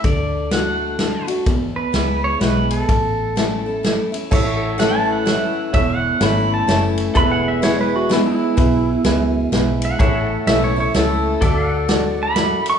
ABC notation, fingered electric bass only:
X:1
M:3/4
L:1/8
Q:"Swing" 1/4=127
K:A
V:1 name="Fingered electric bass" clef=bass
D,,6 | E,,2 C,,2 B,,,2 | A,,,6 | A,,,6 |
E,,,2 G,,,2 F,,,2 | E,,,6 | B,,,2 C,,2 B,,,2 | A,,,2 B,,,2 C,,2 |
D,,6 |]